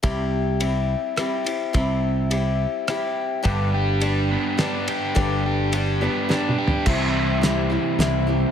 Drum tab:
CC |------------------|------------------|------------------|------------------|
RD |x-----x-----x--x--|x-----x-----x-----|x-----x-----x--x--|x-----x-----------|
HH |------------------|------------------|------------------|------------------|
SD |------------r-----|------------r-----|------------o-----|------------o-----|
T2 |------------------|------------------|------------------|--------------o---|
FT |------------------|------------------|------------------|----------------o-|
BD |o-----------------|o-----------------|o-----------------|o-----------------|

CC |x-----------------|
RD |------------------|
HH |------x-----x-----|
SD |------o-----o-----|
T2 |------------------|
FT |------------------|
BD |o-----------------|